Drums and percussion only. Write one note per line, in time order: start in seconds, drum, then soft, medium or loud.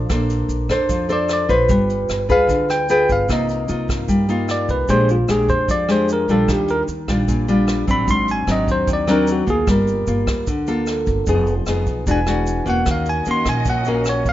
0.10 kick medium
0.10 cross-stick medium
0.10 closed hi-hat medium
0.10 shaker medium
0.30 closed hi-hat soft
0.30 shaker soft
0.49 closed hi-hat soft
0.49 shaker medium
0.69 kick medium
0.69 cross-stick medium
0.69 closed hi-hat soft
0.69 shaker soft
0.89 kick medium
0.89 closed hi-hat medium
0.89 shaker medium
1.09 closed hi-hat soft
1.09 shaker soft
1.29 cross-stick medium
1.29 closed hi-hat soft
1.29 shaker medium
1.49 kick medium
1.49 closed hi-hat soft
1.49 shaker soft
1.69 kick medium
1.69 closed hi-hat medium
1.69 shaker medium
1.90 closed hi-hat soft
1.90 shaker soft
2.09 cross-stick medium
2.09 closed hi-hat soft
2.09 shaker medium
2.29 kick soft
2.29 closed hi-hat soft
2.29 shaker soft
2.49 kick medium
2.49 closed hi-hat medium
2.49 shaker medium
2.69 cross-stick medium
2.69 closed hi-hat soft
2.69 shaker soft
2.89 closed hi-hat soft
2.89 shaker medium
3.09 kick medium
3.09 closed hi-hat soft
3.09 shaker soft
3.29 kick medium
3.29 cross-stick medium
3.29 closed hi-hat medium
3.29 shaker medium
3.49 closed hi-hat soft
3.49 shaker soft
3.69 closed hi-hat soft
3.69 shaker medium
3.88 kick medium
3.88 cross-stick medium
3.88 closed hi-hat soft
3.88 shaker soft
4.09 kick medium
4.09 closed hi-hat medium
4.09 shaker medium
4.29 closed hi-hat soft
4.29 shaker soft
4.49 cross-stick medium
4.49 closed hi-hat soft
4.49 shaker medium
4.69 kick soft
4.69 closed hi-hat soft
4.69 shaker soft
4.88 kick medium
4.88 closed hi-hat medium
4.88 shaker medium
5.09 closed hi-hat soft
5.09 shaker soft
5.29 cross-stick medium
5.29 closed hi-hat soft
5.29 shaker medium
5.48 kick soft
5.48 closed hi-hat soft
5.48 shaker soft
5.68 kick medium
5.68 closed hi-hat medium
5.68 shaker medium
5.88 cross-stick medium
5.88 closed hi-hat soft
5.88 shaker soft
6.09 closed hi-hat soft
6.09 shaker medium
6.29 closed hi-hat soft
6.29 shaker soft
6.48 kick medium
6.48 cross-stick medium
6.48 closed hi-hat medium
6.48 shaker medium
6.68 closed hi-hat soft
6.68 shaker soft
6.88 closed hi-hat soft
6.88 shaker medium
7.08 kick medium
7.08 cross-stick medium
7.08 closed hi-hat soft
7.08 shaker soft
7.28 kick medium
7.28 closed hi-hat medium
7.28 shaker medium
7.48 closed hi-hat soft
7.48 shaker soft
7.68 cross-stick medium
7.68 closed hi-hat soft
7.68 shaker medium
7.87 kick soft
7.87 closed hi-hat soft
7.87 shaker soft
8.08 kick medium
8.08 closed hi-hat medium
8.08 shaker medium
8.28 closed hi-hat soft
8.28 shaker soft
8.47 cross-stick medium
8.47 closed hi-hat soft
8.47 shaker medium
8.68 kick medium
8.68 closed hi-hat soft
8.68 shaker soft
8.87 kick medium
8.87 closed hi-hat medium
8.87 shaker medium
9.07 cross-stick soft
9.07 closed hi-hat soft
9.07 shaker soft
9.27 closed hi-hat soft
9.27 shaker medium
9.47 kick medium
9.47 closed hi-hat soft
9.47 shaker soft
9.67 kick medium
9.67 cross-stick medium
9.67 closed hi-hat soft
9.67 shaker medium
9.87 closed hi-hat soft
9.87 shaker soft
10.07 closed hi-hat soft
10.07 shaker medium
10.27 kick medium
10.27 cross-stick medium
10.27 closed hi-hat soft
10.27 shaker soft
10.47 kick medium
10.47 closed hi-hat medium
10.47 shaker medium
10.67 closed hi-hat soft
10.67 shaker soft
10.87 cross-stick medium
10.87 closed hi-hat soft
10.87 shaker medium
11.07 kick soft
11.07 closed hi-hat soft
11.07 shaker soft
11.26 kick medium
11.26 closed hi-hat medium
11.26 shaker medium
11.47 closed hi-hat soft
11.47 shaker soft
11.66 cross-stick medium
11.66 closed hi-hat soft
11.66 shaker medium
11.87 kick soft
11.87 closed hi-hat soft
11.87 shaker soft
12.07 kick medium
12.07 closed hi-hat medium
12.07 shaker medium
12.26 cross-stick medium
12.26 closed hi-hat soft
12.26 shaker soft
12.46 closed hi-hat soft
12.46 shaker medium
12.66 closed hi-hat soft
12.66 shaker soft
12.86 kick medium
12.86 cross-stick medium
12.86 closed hi-hat medium
12.86 shaker medium
13.05 closed hi-hat soft
13.05 shaker soft
13.25 closed hi-hat soft
13.25 shaker medium
13.45 kick medium
13.45 cross-stick medium
13.45 closed hi-hat soft
13.45 shaker soft
13.65 kick medium
13.65 closed hi-hat medium
13.65 shaker medium
13.85 closed hi-hat soft
13.85 shaker soft
14.05 cross-stick medium
14.05 closed hi-hat soft
14.05 shaker medium
14.25 kick medium
14.25 closed hi-hat soft
14.25 shaker soft